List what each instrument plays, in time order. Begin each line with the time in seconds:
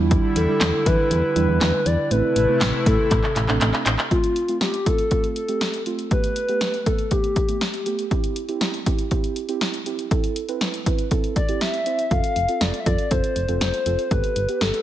Already playing: fm bass E2, analog synth pad D3 G3 E4, synth keys G3 D4 E4
0.11 kick, closed hi-hat
0.36 fm bass E2, soft synth lead A4, closed hi-hat
0.49 synth keys G3 D4 E4
0.61 fm bass E2, snare, clap, closed hi-hat
0.86 fm bass E3, soft synth lead B4, kick, closed hi-hat
1.11 fm bass E2, soft synth lead B4, closed hi-hat
1.36 fm bass E2, synth keys G3 D4 E4, closed hi-hat
1.49 fm bass E2
1.61 fm bass E2, snare, clap, closed hi-hat
1.86 fm bass E2, soft synth lead D5, closed hi-hat
2.11 fm bass A1, analog synth pad C3 A3 E4, synth keys A3 C4 E4, soft synth lead B4, closed hi-hat
2.36 fm bass A1, closed hi-hat
2.49 synth keys A3 C4 E4
2.61 fm bass A1, snare, clap, closed hi-hat
2.86 fm bass A2, soft synth lead A4, kick, closed hi-hat
3.11 fm bass A1, kick, clap, closed hi-hat
3.24 clap
3.36 fm bass A1, clap, closed hi-hat
3.49 fm bass A1, synth keys A3 C4 D4, clap
3.61 fm bass A1, clap, closed hi-hat
3.74 clap
3.86 fm bass A1, clap, closed hi-hat
3.99 clap
4.11 synth keys A3 C4 F4, soft synth lead F4, kick, closed hi-hat
4.24 closed hi-hat
4.36 closed hi-hat
4.48 synth keys A3 C4 F4, closed hi-hat
4.61 soft synth lead G4, snare, closed hi-hat
4.74 closed hi-hat
4.86 synth keys A3 C4 F4, soft synth lead A4, kick, closed hi-hat
4.98 closed hi-hat
5.11 synth keys A3 C4 F4, kick, closed hi-hat
5.24 closed hi-hat
5.36 soft synth lead A4, closed hi-hat
5.49 synth keys A3 C4 G4, closed hi-hat
5.61 snare, closed hi-hat
5.74 closed hi-hat
5.86 synth keys A3 C4 F4, closed hi-hat
5.99 closed hi-hat
6.11 synth keys A3 B3 G4, soft synth lead B4, kick, closed hi-hat
6.24 closed hi-hat
6.36 closed hi-hat
6.49 synth keys A3 B3 G4, closed hi-hat
6.61 snare, closed hi-hat
6.74 closed hi-hat
6.86 synth keys A3 B3 A4, soft synth lead A4, kick, closed hi-hat
6.99 closed hi-hat
7.11 synth keys A3 B3 G4, soft synth lead G4, kick, closed hi-hat
7.24 closed hi-hat
7.36 kick, closed hi-hat
7.49 synth keys A3 B3 G4, closed hi-hat
7.61 snare, closed hi-hat
7.74 closed hi-hat
7.86 synth keys A3 B3 G4, closed hi-hat
7.99 closed hi-hat
8.11 synth keys C4 E4 G4, kick, closed hi-hat
8.24 closed hi-hat
8.36 closed hi-hat
8.49 synth keys C4 E4 G4, closed hi-hat
8.61 snare, closed hi-hat
8.74 closed hi-hat
8.86 synth keys C4 E4 G4, kick, closed hi-hat
8.99 closed hi-hat
9.11 synth keys C4 E4 G4, kick, closed hi-hat
9.24 closed hi-hat
9.36 closed hi-hat
9.49 synth keys C4 E4 G4, closed hi-hat
9.61 snare, closed hi-hat
9.74 closed hi-hat
9.86 synth keys C4 E4 G4, closed hi-hat
9.99 closed hi-hat
10.11 synth keys C4 E4 A4, kick, closed hi-hat
10.24 closed hi-hat
10.36 closed hi-hat
10.49 synth keys C4 E4 B4, closed hi-hat
10.61 snare, closed hi-hat
10.74 closed hi-hat
10.86 synth keys C4 E4 B4, kick, closed hi-hat
10.99 closed hi-hat
11.11 synth keys C4 E4 A4, kick, closed hi-hat
11.24 closed hi-hat
11.36 soft synth lead D5, kick, closed hi-hat
11.49 synth keys C4 E4 G4, closed hi-hat
11.61 soft synth lead E5, snare, closed hi-hat
11.74 closed hi-hat
11.86 synth keys C4 E4 C5, closed hi-hat
11.99 closed hi-hat
12.11 fm bass F1, synth keys C4 F4 A4, soft synth lead F5, kick, closed hi-hat
12.24 closed hi-hat
12.36 fm bass F1, closed hi-hat
12.49 synth keys C4 F4 A4, closed hi-hat
12.61 fm bass F1, soft synth lead D5, snare, closed hi-hat
12.74 closed hi-hat
12.80 soft synth lead E5
12.86 fm bass F2, synth keys C4 F4 A4, soft synth lead D5, kick, closed hi-hat
12.98 closed hi-hat
13.11 fm bass F1, synth keys C4 F4 A4, soft synth lead C5, kick, closed hi-hat
13.24 closed hi-hat
13.36 fm bass F1, closed hi-hat
13.49 fm bass F1, synth keys C4 F4 A4, closed hi-hat
13.61 fm bass F1, soft synth lead C5, snare, closed hi-hat
13.74 closed hi-hat
13.86 fm bass F1, synth keys C4 F4 A4, closed hi-hat
13.99 closed hi-hat
14.11 fm bass G1, synth keys B3 G4 A4, soft synth lead B4, kick, closed hi-hat
14.24 closed hi-hat
14.36 fm bass G1, closed hi-hat
14.49 synth keys B3 G4 B4, closed hi-hat
14.61 fm bass G1, soft synth lead A4, snare, closed hi-hat
14.74 closed hi-hat